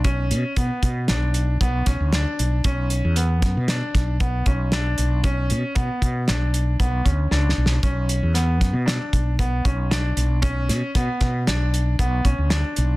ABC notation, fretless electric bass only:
X:1
M:5/4
L:1/16
Q:1/4=116
K:Bm
V:1 name="Fretless electric bass" clef=bass
B,,,2 B,, z B,, z B,,2 B,,,4 B,,,2 B,,, D,,2 z B,,,2 | B,,,3 E,,3 F,, B,,2 z B,,,4 B,,,4 B,,,2- | B,,,2 B,, z B,, z B,,2 B,,,4 B,,,2 D,,2 C,,2 B,,,2 | B,,,3 E,,3 F,, B,,2 z B,,,4 B,,,4 B,,,2- |
B,,,2 B,, z B,, z B,,2 B,,,4 B,,,2 B,,, D,,2 z B,,,2 |]